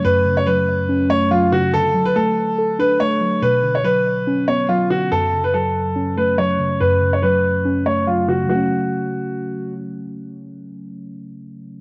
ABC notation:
X:1
M:4/4
L:1/16
Q:1/4=142
K:F#m
V:1 name="Grand piano"
B3 c B6 c2 ^E2 F2 | A3 B A6 B2 c4 | B3 c B6 c2 ^E2 F2 | A3 B A6 B2 c4 |
B3 c B6 c2 ^E2 F2 | F12 z4 | z16 |]
V:2 name="Synth keys" clef=bass
[F,,C,F,A,C]2 C,2 F,4 C2 A,2 F,2 C,2 | D,2 F,2 A,4 A2 D2 A,2 F,2 | B,,2 D,2 F,4 C2 B,2 F,2 D,2 | F,,2 C,2 F,4 C2 A,2 F,2 C,2 |
F,,2 C,2 F,4 C2 A,2 F,2 C,2 | [C,F,A,C]16- | [C,F,A,C]16 |]